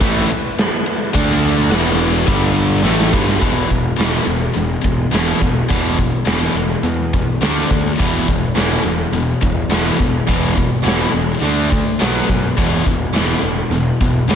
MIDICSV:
0, 0, Header, 1, 5, 480
1, 0, Start_track
1, 0, Tempo, 571429
1, 961, Time_signature, 4, 2, 24, 8
1, 12057, End_track
2, 0, Start_track
2, 0, Title_t, "Tonewheel organ"
2, 0, Program_c, 0, 16
2, 0, Note_on_c, 0, 64, 63
2, 0, Note_on_c, 0, 71, 60
2, 0, Note_on_c, 0, 78, 69
2, 919, Note_off_c, 0, 71, 0
2, 920, Note_off_c, 0, 78, 0
2, 923, Note_off_c, 0, 64, 0
2, 943, Note_on_c, 0, 62, 67
2, 952, Note_on_c, 0, 76, 68
2, 953, Note_on_c, 0, 69, 59
2, 1412, Note_on_c, 0, 64, 62
2, 1413, Note_on_c, 0, 71, 60
2, 1415, Note_on_c, 0, 78, 69
2, 1425, Note_off_c, 0, 62, 0
2, 1429, Note_off_c, 0, 76, 0
2, 1430, Note_off_c, 0, 69, 0
2, 1892, Note_on_c, 0, 55, 64
2, 1899, Note_off_c, 0, 64, 0
2, 1899, Note_off_c, 0, 71, 0
2, 1900, Note_off_c, 0, 78, 0
2, 1900, Note_on_c, 0, 62, 57
2, 1901, Note_on_c, 0, 69, 79
2, 2362, Note_on_c, 0, 52, 59
2, 2365, Note_on_c, 0, 59, 58
2, 2366, Note_on_c, 0, 66, 69
2, 2378, Note_off_c, 0, 55, 0
2, 2382, Note_off_c, 0, 62, 0
2, 2382, Note_off_c, 0, 69, 0
2, 2852, Note_off_c, 0, 52, 0
2, 2854, Note_off_c, 0, 59, 0
2, 2854, Note_off_c, 0, 66, 0
2, 12057, End_track
3, 0, Start_track
3, 0, Title_t, "Distorted electric guitar"
3, 0, Program_c, 1, 30
3, 6, Note_on_c, 1, 45, 88
3, 7, Note_on_c, 1, 52, 99
3, 17, Note_on_c, 1, 57, 98
3, 238, Note_off_c, 1, 45, 0
3, 238, Note_off_c, 1, 52, 0
3, 243, Note_off_c, 1, 57, 0
3, 954, Note_on_c, 1, 50, 85
3, 961, Note_on_c, 1, 57, 100
3, 963, Note_on_c, 1, 62, 107
3, 1428, Note_off_c, 1, 50, 0
3, 1432, Note_off_c, 1, 57, 0
3, 1433, Note_off_c, 1, 62, 0
3, 1436, Note_on_c, 1, 40, 92
3, 1438, Note_on_c, 1, 47, 94
3, 1438, Note_on_c, 1, 52, 102
3, 1899, Note_off_c, 1, 40, 0
3, 1902, Note_on_c, 1, 43, 84
3, 1905, Note_off_c, 1, 47, 0
3, 1908, Note_on_c, 1, 50, 98
3, 1909, Note_off_c, 1, 52, 0
3, 1917, Note_on_c, 1, 55, 97
3, 2379, Note_off_c, 1, 50, 0
3, 2381, Note_off_c, 1, 43, 0
3, 2382, Note_on_c, 1, 45, 91
3, 2383, Note_off_c, 1, 55, 0
3, 2386, Note_on_c, 1, 52, 87
3, 2398, Note_on_c, 1, 57, 99
3, 2621, Note_off_c, 1, 45, 0
3, 2623, Note_off_c, 1, 52, 0
3, 2623, Note_on_c, 1, 43, 78
3, 2628, Note_on_c, 1, 50, 95
3, 2629, Note_off_c, 1, 57, 0
3, 2635, Note_on_c, 1, 55, 83
3, 2855, Note_off_c, 1, 43, 0
3, 2858, Note_on_c, 1, 40, 85
3, 2863, Note_off_c, 1, 50, 0
3, 2866, Note_off_c, 1, 55, 0
3, 2866, Note_on_c, 1, 47, 85
3, 2869, Note_on_c, 1, 52, 91
3, 3084, Note_off_c, 1, 47, 0
3, 3085, Note_off_c, 1, 40, 0
3, 3094, Note_on_c, 1, 47, 62
3, 3095, Note_on_c, 1, 40, 68
3, 3096, Note_off_c, 1, 52, 0
3, 3318, Note_off_c, 1, 40, 0
3, 3319, Note_off_c, 1, 47, 0
3, 3328, Note_on_c, 1, 40, 77
3, 3335, Note_on_c, 1, 47, 82
3, 3343, Note_on_c, 1, 52, 91
3, 3562, Note_off_c, 1, 40, 0
3, 3563, Note_off_c, 1, 47, 0
3, 3572, Note_on_c, 1, 40, 68
3, 3573, Note_off_c, 1, 52, 0
3, 3573, Note_on_c, 1, 47, 72
3, 3798, Note_off_c, 1, 40, 0
3, 3798, Note_off_c, 1, 47, 0
3, 3808, Note_on_c, 1, 40, 72
3, 3810, Note_on_c, 1, 47, 71
3, 4036, Note_off_c, 1, 40, 0
3, 4037, Note_off_c, 1, 47, 0
3, 4044, Note_on_c, 1, 40, 62
3, 4050, Note_on_c, 1, 47, 69
3, 4274, Note_off_c, 1, 40, 0
3, 4277, Note_off_c, 1, 47, 0
3, 4293, Note_on_c, 1, 40, 77
3, 4301, Note_on_c, 1, 47, 81
3, 4307, Note_on_c, 1, 52, 85
3, 4523, Note_off_c, 1, 40, 0
3, 4526, Note_off_c, 1, 47, 0
3, 4533, Note_on_c, 1, 40, 66
3, 4535, Note_off_c, 1, 52, 0
3, 4536, Note_on_c, 1, 47, 66
3, 4758, Note_off_c, 1, 40, 0
3, 4760, Note_off_c, 1, 47, 0
3, 4773, Note_on_c, 1, 40, 81
3, 4782, Note_on_c, 1, 47, 79
3, 4786, Note_on_c, 1, 52, 83
3, 5008, Note_off_c, 1, 40, 0
3, 5012, Note_off_c, 1, 47, 0
3, 5014, Note_off_c, 1, 52, 0
3, 5021, Note_on_c, 1, 47, 69
3, 5022, Note_on_c, 1, 40, 62
3, 5239, Note_off_c, 1, 40, 0
3, 5242, Note_off_c, 1, 47, 0
3, 5249, Note_on_c, 1, 40, 83
3, 5259, Note_on_c, 1, 47, 77
3, 5263, Note_on_c, 1, 52, 91
3, 5486, Note_off_c, 1, 40, 0
3, 5491, Note_off_c, 1, 47, 0
3, 5493, Note_off_c, 1, 52, 0
3, 5506, Note_on_c, 1, 40, 63
3, 5510, Note_on_c, 1, 47, 75
3, 5725, Note_off_c, 1, 40, 0
3, 5727, Note_off_c, 1, 47, 0
3, 5738, Note_on_c, 1, 40, 69
3, 5739, Note_on_c, 1, 47, 63
3, 5961, Note_off_c, 1, 40, 0
3, 5961, Note_off_c, 1, 47, 0
3, 5991, Note_on_c, 1, 40, 57
3, 5999, Note_on_c, 1, 47, 67
3, 6208, Note_off_c, 1, 40, 0
3, 6212, Note_off_c, 1, 47, 0
3, 6226, Note_on_c, 1, 50, 74
3, 6226, Note_on_c, 1, 57, 81
3, 6236, Note_on_c, 1, 62, 89
3, 6455, Note_off_c, 1, 50, 0
3, 6455, Note_off_c, 1, 57, 0
3, 6460, Note_off_c, 1, 62, 0
3, 6466, Note_on_c, 1, 50, 55
3, 6473, Note_on_c, 1, 57, 68
3, 6685, Note_off_c, 1, 50, 0
3, 6689, Note_off_c, 1, 57, 0
3, 6702, Note_on_c, 1, 40, 86
3, 6711, Note_on_c, 1, 47, 74
3, 6714, Note_on_c, 1, 52, 96
3, 6933, Note_off_c, 1, 40, 0
3, 6938, Note_off_c, 1, 47, 0
3, 6939, Note_off_c, 1, 52, 0
3, 6950, Note_on_c, 1, 40, 64
3, 6957, Note_on_c, 1, 47, 67
3, 7168, Note_off_c, 1, 40, 0
3, 7171, Note_off_c, 1, 47, 0
3, 7181, Note_on_c, 1, 40, 83
3, 7187, Note_on_c, 1, 47, 93
3, 7190, Note_on_c, 1, 52, 100
3, 7413, Note_off_c, 1, 40, 0
3, 7416, Note_off_c, 1, 47, 0
3, 7417, Note_off_c, 1, 52, 0
3, 7425, Note_on_c, 1, 40, 67
3, 7427, Note_on_c, 1, 47, 74
3, 7645, Note_off_c, 1, 40, 0
3, 7647, Note_off_c, 1, 47, 0
3, 7669, Note_on_c, 1, 40, 66
3, 7671, Note_on_c, 1, 47, 71
3, 7888, Note_off_c, 1, 40, 0
3, 7889, Note_off_c, 1, 47, 0
3, 7903, Note_on_c, 1, 40, 59
3, 7911, Note_on_c, 1, 47, 68
3, 8125, Note_off_c, 1, 40, 0
3, 8129, Note_off_c, 1, 47, 0
3, 8145, Note_on_c, 1, 40, 81
3, 8151, Note_on_c, 1, 47, 77
3, 8156, Note_on_c, 1, 52, 90
3, 8376, Note_off_c, 1, 40, 0
3, 8379, Note_off_c, 1, 47, 0
3, 8381, Note_off_c, 1, 52, 0
3, 8386, Note_on_c, 1, 40, 55
3, 8393, Note_on_c, 1, 47, 77
3, 8607, Note_off_c, 1, 40, 0
3, 8610, Note_off_c, 1, 47, 0
3, 8627, Note_on_c, 1, 40, 81
3, 8633, Note_on_c, 1, 47, 89
3, 8636, Note_on_c, 1, 52, 88
3, 8857, Note_off_c, 1, 40, 0
3, 8860, Note_off_c, 1, 47, 0
3, 8862, Note_off_c, 1, 52, 0
3, 8872, Note_on_c, 1, 40, 59
3, 8873, Note_on_c, 1, 47, 67
3, 9090, Note_off_c, 1, 40, 0
3, 9091, Note_off_c, 1, 47, 0
3, 9101, Note_on_c, 1, 40, 89
3, 9108, Note_on_c, 1, 47, 81
3, 9109, Note_on_c, 1, 52, 82
3, 9334, Note_off_c, 1, 40, 0
3, 9338, Note_off_c, 1, 47, 0
3, 9339, Note_off_c, 1, 52, 0
3, 9362, Note_on_c, 1, 47, 73
3, 9365, Note_on_c, 1, 40, 66
3, 9576, Note_off_c, 1, 47, 0
3, 9577, Note_off_c, 1, 40, 0
3, 9603, Note_on_c, 1, 50, 69
3, 9613, Note_on_c, 1, 57, 85
3, 9614, Note_on_c, 1, 62, 86
3, 9826, Note_off_c, 1, 50, 0
3, 9831, Note_off_c, 1, 57, 0
3, 9831, Note_off_c, 1, 62, 0
3, 9837, Note_on_c, 1, 50, 61
3, 9844, Note_on_c, 1, 57, 70
3, 10053, Note_off_c, 1, 50, 0
3, 10057, Note_off_c, 1, 57, 0
3, 10073, Note_on_c, 1, 47, 86
3, 10076, Note_on_c, 1, 54, 71
3, 10085, Note_on_c, 1, 59, 90
3, 10301, Note_off_c, 1, 47, 0
3, 10303, Note_off_c, 1, 54, 0
3, 10307, Note_off_c, 1, 59, 0
3, 10323, Note_on_c, 1, 54, 68
3, 10324, Note_on_c, 1, 47, 57
3, 10537, Note_off_c, 1, 54, 0
3, 10538, Note_off_c, 1, 47, 0
3, 10556, Note_on_c, 1, 40, 84
3, 10564, Note_on_c, 1, 47, 86
3, 10571, Note_on_c, 1, 52, 91
3, 10783, Note_off_c, 1, 40, 0
3, 10787, Note_off_c, 1, 47, 0
3, 10791, Note_off_c, 1, 52, 0
3, 10805, Note_on_c, 1, 40, 59
3, 10808, Note_on_c, 1, 47, 66
3, 11018, Note_off_c, 1, 40, 0
3, 11020, Note_off_c, 1, 47, 0
3, 11031, Note_on_c, 1, 40, 84
3, 11034, Note_on_c, 1, 47, 80
3, 11043, Note_on_c, 1, 52, 95
3, 11261, Note_off_c, 1, 40, 0
3, 11263, Note_off_c, 1, 47, 0
3, 11267, Note_off_c, 1, 52, 0
3, 11285, Note_on_c, 1, 40, 71
3, 11287, Note_on_c, 1, 47, 69
3, 11498, Note_off_c, 1, 40, 0
3, 11500, Note_off_c, 1, 47, 0
3, 11526, Note_on_c, 1, 40, 65
3, 11526, Note_on_c, 1, 47, 71
3, 11739, Note_off_c, 1, 40, 0
3, 11739, Note_off_c, 1, 47, 0
3, 11764, Note_on_c, 1, 40, 60
3, 11767, Note_on_c, 1, 47, 68
3, 11978, Note_off_c, 1, 40, 0
3, 11980, Note_off_c, 1, 47, 0
3, 11994, Note_on_c, 1, 40, 84
3, 11998, Note_on_c, 1, 47, 86
3, 12006, Note_on_c, 1, 52, 90
3, 12057, Note_off_c, 1, 40, 0
3, 12057, Note_off_c, 1, 47, 0
3, 12057, Note_off_c, 1, 52, 0
3, 12057, End_track
4, 0, Start_track
4, 0, Title_t, "Picked electric bass"
4, 0, Program_c, 2, 34
4, 3, Note_on_c, 2, 33, 90
4, 226, Note_off_c, 2, 33, 0
4, 961, Note_on_c, 2, 38, 82
4, 1405, Note_off_c, 2, 38, 0
4, 1418, Note_on_c, 2, 28, 88
4, 1873, Note_off_c, 2, 28, 0
4, 1912, Note_on_c, 2, 31, 87
4, 2359, Note_off_c, 2, 31, 0
4, 2377, Note_on_c, 2, 33, 89
4, 2608, Note_off_c, 2, 33, 0
4, 2630, Note_on_c, 2, 31, 80
4, 2854, Note_off_c, 2, 31, 0
4, 2872, Note_on_c, 2, 28, 80
4, 3038, Note_off_c, 2, 28, 0
4, 3108, Note_on_c, 2, 28, 81
4, 3275, Note_off_c, 2, 28, 0
4, 3339, Note_on_c, 2, 28, 78
4, 3509, Note_off_c, 2, 28, 0
4, 3585, Note_on_c, 2, 28, 79
4, 3753, Note_off_c, 2, 28, 0
4, 3830, Note_on_c, 2, 28, 74
4, 3996, Note_off_c, 2, 28, 0
4, 4063, Note_on_c, 2, 28, 78
4, 4231, Note_off_c, 2, 28, 0
4, 4299, Note_on_c, 2, 28, 77
4, 4469, Note_off_c, 2, 28, 0
4, 4543, Note_on_c, 2, 28, 66
4, 4712, Note_off_c, 2, 28, 0
4, 4790, Note_on_c, 2, 28, 81
4, 5121, Note_off_c, 2, 28, 0
4, 5259, Note_on_c, 2, 28, 84
4, 5429, Note_off_c, 2, 28, 0
4, 5498, Note_on_c, 2, 28, 81
4, 5668, Note_off_c, 2, 28, 0
4, 5736, Note_on_c, 2, 40, 80
4, 6073, Note_off_c, 2, 40, 0
4, 6228, Note_on_c, 2, 38, 78
4, 6395, Note_off_c, 2, 38, 0
4, 6474, Note_on_c, 2, 38, 74
4, 6639, Note_off_c, 2, 38, 0
4, 6716, Note_on_c, 2, 28, 81
4, 6881, Note_off_c, 2, 28, 0
4, 6951, Note_on_c, 2, 28, 89
4, 7118, Note_off_c, 2, 28, 0
4, 7190, Note_on_c, 2, 28, 81
4, 7357, Note_off_c, 2, 28, 0
4, 7425, Note_on_c, 2, 28, 74
4, 7594, Note_off_c, 2, 28, 0
4, 7661, Note_on_c, 2, 28, 77
4, 7831, Note_off_c, 2, 28, 0
4, 7912, Note_on_c, 2, 28, 85
4, 8079, Note_off_c, 2, 28, 0
4, 8138, Note_on_c, 2, 28, 79
4, 8309, Note_off_c, 2, 28, 0
4, 8395, Note_on_c, 2, 28, 72
4, 8561, Note_off_c, 2, 28, 0
4, 8634, Note_on_c, 2, 28, 87
4, 8966, Note_off_c, 2, 28, 0
4, 9109, Note_on_c, 2, 28, 78
4, 9277, Note_off_c, 2, 28, 0
4, 9356, Note_on_c, 2, 28, 78
4, 9522, Note_off_c, 2, 28, 0
4, 9590, Note_on_c, 2, 38, 77
4, 9924, Note_off_c, 2, 38, 0
4, 10087, Note_on_c, 2, 35, 75
4, 10250, Note_off_c, 2, 35, 0
4, 10321, Note_on_c, 2, 42, 66
4, 10486, Note_off_c, 2, 42, 0
4, 10568, Note_on_c, 2, 28, 74
4, 10731, Note_off_c, 2, 28, 0
4, 10805, Note_on_c, 2, 28, 80
4, 10968, Note_off_c, 2, 28, 0
4, 11035, Note_on_c, 2, 28, 76
4, 11202, Note_off_c, 2, 28, 0
4, 11278, Note_on_c, 2, 28, 77
4, 11444, Note_off_c, 2, 28, 0
4, 11507, Note_on_c, 2, 28, 76
4, 11677, Note_off_c, 2, 28, 0
4, 11767, Note_on_c, 2, 28, 89
4, 11931, Note_off_c, 2, 28, 0
4, 11979, Note_on_c, 2, 28, 88
4, 12057, Note_off_c, 2, 28, 0
4, 12057, End_track
5, 0, Start_track
5, 0, Title_t, "Drums"
5, 7, Note_on_c, 9, 36, 107
5, 8, Note_on_c, 9, 51, 94
5, 91, Note_off_c, 9, 36, 0
5, 92, Note_off_c, 9, 51, 0
5, 254, Note_on_c, 9, 51, 78
5, 338, Note_off_c, 9, 51, 0
5, 490, Note_on_c, 9, 51, 89
5, 497, Note_on_c, 9, 38, 112
5, 574, Note_off_c, 9, 51, 0
5, 581, Note_off_c, 9, 38, 0
5, 722, Note_on_c, 9, 51, 76
5, 806, Note_off_c, 9, 51, 0
5, 964, Note_on_c, 9, 36, 97
5, 964, Note_on_c, 9, 51, 94
5, 1048, Note_off_c, 9, 36, 0
5, 1048, Note_off_c, 9, 51, 0
5, 1094, Note_on_c, 9, 38, 31
5, 1178, Note_off_c, 9, 38, 0
5, 1200, Note_on_c, 9, 51, 67
5, 1284, Note_off_c, 9, 51, 0
5, 1436, Note_on_c, 9, 51, 100
5, 1443, Note_on_c, 9, 38, 106
5, 1520, Note_off_c, 9, 51, 0
5, 1527, Note_off_c, 9, 38, 0
5, 1669, Note_on_c, 9, 51, 81
5, 1753, Note_off_c, 9, 51, 0
5, 1904, Note_on_c, 9, 51, 98
5, 1914, Note_on_c, 9, 36, 103
5, 1988, Note_off_c, 9, 51, 0
5, 1998, Note_off_c, 9, 36, 0
5, 2140, Note_on_c, 9, 51, 76
5, 2224, Note_off_c, 9, 51, 0
5, 2395, Note_on_c, 9, 38, 59
5, 2479, Note_off_c, 9, 38, 0
5, 2525, Note_on_c, 9, 38, 67
5, 2609, Note_off_c, 9, 38, 0
5, 2632, Note_on_c, 9, 36, 90
5, 2716, Note_off_c, 9, 36, 0
5, 2757, Note_on_c, 9, 38, 73
5, 2841, Note_off_c, 9, 38, 0
5, 2870, Note_on_c, 9, 46, 45
5, 2873, Note_on_c, 9, 36, 93
5, 2954, Note_off_c, 9, 46, 0
5, 2957, Note_off_c, 9, 36, 0
5, 3114, Note_on_c, 9, 36, 69
5, 3198, Note_off_c, 9, 36, 0
5, 3359, Note_on_c, 9, 46, 48
5, 3366, Note_on_c, 9, 38, 98
5, 3443, Note_off_c, 9, 46, 0
5, 3450, Note_off_c, 9, 38, 0
5, 3834, Note_on_c, 9, 46, 55
5, 3918, Note_off_c, 9, 46, 0
5, 4068, Note_on_c, 9, 36, 81
5, 4152, Note_off_c, 9, 36, 0
5, 4316, Note_on_c, 9, 46, 54
5, 4323, Note_on_c, 9, 38, 93
5, 4400, Note_off_c, 9, 46, 0
5, 4407, Note_off_c, 9, 38, 0
5, 4549, Note_on_c, 9, 36, 83
5, 4633, Note_off_c, 9, 36, 0
5, 4791, Note_on_c, 9, 36, 92
5, 4791, Note_on_c, 9, 46, 49
5, 4875, Note_off_c, 9, 36, 0
5, 4875, Note_off_c, 9, 46, 0
5, 5028, Note_on_c, 9, 36, 78
5, 5112, Note_off_c, 9, 36, 0
5, 5262, Note_on_c, 9, 46, 52
5, 5269, Note_on_c, 9, 38, 101
5, 5346, Note_off_c, 9, 46, 0
5, 5353, Note_off_c, 9, 38, 0
5, 5752, Note_on_c, 9, 46, 52
5, 5836, Note_off_c, 9, 46, 0
5, 5994, Note_on_c, 9, 36, 86
5, 6078, Note_off_c, 9, 36, 0
5, 6235, Note_on_c, 9, 46, 45
5, 6241, Note_on_c, 9, 38, 110
5, 6319, Note_off_c, 9, 46, 0
5, 6325, Note_off_c, 9, 38, 0
5, 6474, Note_on_c, 9, 36, 85
5, 6558, Note_off_c, 9, 36, 0
5, 6718, Note_on_c, 9, 36, 94
5, 6723, Note_on_c, 9, 46, 45
5, 6802, Note_off_c, 9, 36, 0
5, 6807, Note_off_c, 9, 46, 0
5, 6957, Note_on_c, 9, 36, 83
5, 7041, Note_off_c, 9, 36, 0
5, 7195, Note_on_c, 9, 46, 55
5, 7202, Note_on_c, 9, 38, 104
5, 7279, Note_off_c, 9, 46, 0
5, 7286, Note_off_c, 9, 38, 0
5, 7672, Note_on_c, 9, 46, 55
5, 7756, Note_off_c, 9, 46, 0
5, 7918, Note_on_c, 9, 36, 84
5, 8002, Note_off_c, 9, 36, 0
5, 8157, Note_on_c, 9, 46, 49
5, 8164, Note_on_c, 9, 38, 94
5, 8241, Note_off_c, 9, 46, 0
5, 8248, Note_off_c, 9, 38, 0
5, 8399, Note_on_c, 9, 36, 79
5, 8483, Note_off_c, 9, 36, 0
5, 8640, Note_on_c, 9, 36, 92
5, 8640, Note_on_c, 9, 46, 52
5, 8724, Note_off_c, 9, 36, 0
5, 8724, Note_off_c, 9, 46, 0
5, 8883, Note_on_c, 9, 36, 73
5, 8967, Note_off_c, 9, 36, 0
5, 9131, Note_on_c, 9, 46, 50
5, 9138, Note_on_c, 9, 38, 104
5, 9215, Note_off_c, 9, 46, 0
5, 9222, Note_off_c, 9, 38, 0
5, 9611, Note_on_c, 9, 46, 53
5, 9695, Note_off_c, 9, 46, 0
5, 9845, Note_on_c, 9, 36, 84
5, 9929, Note_off_c, 9, 36, 0
5, 10087, Note_on_c, 9, 46, 47
5, 10094, Note_on_c, 9, 38, 108
5, 10171, Note_off_c, 9, 46, 0
5, 10178, Note_off_c, 9, 38, 0
5, 10326, Note_on_c, 9, 36, 81
5, 10410, Note_off_c, 9, 36, 0
5, 10566, Note_on_c, 9, 36, 96
5, 10566, Note_on_c, 9, 46, 40
5, 10650, Note_off_c, 9, 36, 0
5, 10650, Note_off_c, 9, 46, 0
5, 10805, Note_on_c, 9, 36, 79
5, 10889, Note_off_c, 9, 36, 0
5, 11050, Note_on_c, 9, 46, 51
5, 11056, Note_on_c, 9, 38, 107
5, 11134, Note_off_c, 9, 46, 0
5, 11140, Note_off_c, 9, 38, 0
5, 11543, Note_on_c, 9, 46, 56
5, 11627, Note_off_c, 9, 46, 0
5, 11767, Note_on_c, 9, 36, 75
5, 11851, Note_off_c, 9, 36, 0
5, 12012, Note_on_c, 9, 46, 49
5, 12019, Note_on_c, 9, 38, 103
5, 12057, Note_off_c, 9, 38, 0
5, 12057, Note_off_c, 9, 46, 0
5, 12057, End_track
0, 0, End_of_file